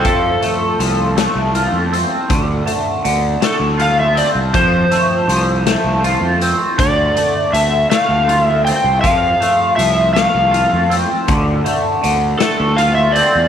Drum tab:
HH |xxxxxx|xxxxxx|xxxxxx|xxxxxx|
SD |---o--|---o--|---o--|---o--|
BD |o-----|o-----|o-----|o-----|

HH |xxxxxx|xxxxxx|
SD |---o--|---o--|
BD |o-----|o-----|